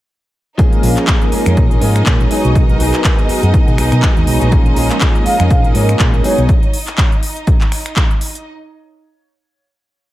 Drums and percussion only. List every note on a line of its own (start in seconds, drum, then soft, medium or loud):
0.59 kick loud
0.59 closed hi-hat medium
0.73 closed hi-hat soft
0.83 open hi-hat loud
0.97 clap soft
0.97 closed hi-hat medium
1.07 kick loud
1.07 clap loud
1.07 closed hi-hat medium
1.22 closed hi-hat soft
1.32 open hi-hat loud
1.46 finger snap medium
1.46 closed hi-hat medium
1.57 kick loud
1.57 closed hi-hat medium
1.71 closed hi-hat soft
1.82 open hi-hat loud
1.96 finger snap medium
1.96 closed hi-hat medium
2.06 kick loud
2.06 clap loud
2.06 closed hi-hat soft
2.20 closed hi-hat soft
2.31 open hi-hat loud
2.45 closed hi-hat medium
2.55 kick loud
2.55 closed hi-hat medium
2.69 closed hi-hat soft
2.80 open hi-hat loud
2.94 clap soft
2.94 closed hi-hat medium
3.04 kick loud
3.04 clap loud
3.04 closed hi-hat medium
3.19 closed hi-hat soft
3.29 open hi-hat loud
3.43 closed hi-hat medium
3.54 kick loud
3.54 closed hi-hat medium
3.68 closed hi-hat soft
3.78 finger snap medium
3.78 open hi-hat loud
3.92 finger snap medium
3.92 closed hi-hat medium
4.02 kick loud
4.02 clap loud
4.02 closed hi-hat medium
4.17 closed hi-hat soft
4.27 open hi-hat loud
4.41 closed hi-hat medium
4.52 kick loud
4.52 closed hi-hat medium
4.66 closed hi-hat soft
4.76 open hi-hat loud
4.90 clap soft
4.90 closed hi-hat medium
5.01 kick loud
5.01 clap loud
5.01 closed hi-hat medium
5.15 closed hi-hat soft
5.26 open hi-hat loud
5.40 finger snap medium
5.40 closed hi-hat medium
5.50 kick loud
5.50 closed hi-hat medium
5.64 closed hi-hat soft
5.75 open hi-hat loud
5.89 finger snap medium
5.89 closed hi-hat medium
5.99 kick loud
5.99 clap loud
5.99 closed hi-hat soft
6.14 closed hi-hat soft
6.24 open hi-hat loud
6.38 closed hi-hat soft
6.49 kick loud
6.49 closed hi-hat soft
6.63 closed hi-hat soft
6.74 open hi-hat loud
6.87 clap soft
6.87 closed hi-hat medium
6.98 kick loud
6.98 clap loud
6.98 closed hi-hat soft
7.12 closed hi-hat soft
7.23 open hi-hat loud
7.37 closed hi-hat medium
7.47 kick loud
7.47 closed hi-hat medium
7.61 clap soft
7.61 closed hi-hat soft
7.72 finger snap medium
7.72 open hi-hat loud
7.86 finger snap medium
7.86 closed hi-hat medium
7.96 kick loud
7.96 clap loud
7.96 closed hi-hat soft
8.11 closed hi-hat soft
8.21 open hi-hat loud
8.35 closed hi-hat medium